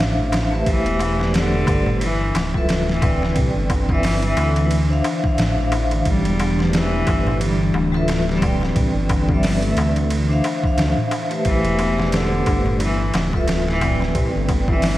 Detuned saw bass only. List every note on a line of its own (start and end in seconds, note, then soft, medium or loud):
0.00 0.64 A1 medium
0.67 0.84 A1 loud
0.86 1.65 E1 loud
1.68 2.32 G1 medium
2.35 3.34 D1 medium
3.36 3.53 C2 medium
3.56 4.35 G1 medium
4.37 5.02 D2 medium
5.38 6.03 A1 medium
6.06 6.23 A1 loud
6.25 7.04 E1 loud
7.07 7.72 G1 medium
7.74 8.73 D1 loud
8.76 8.93 C2 medium
8.94 9.74 G1 loud
9.76 10.41 D2 loud
10.77 10.95 D2 loud
11.45 11.62 A1 medium
11.64 12.44 E1 loud
12.47 13.11 G1 medium
13.14 14.12 D1 medium
14.15 14.32 C2 medium
14.35 14.98 G1 loud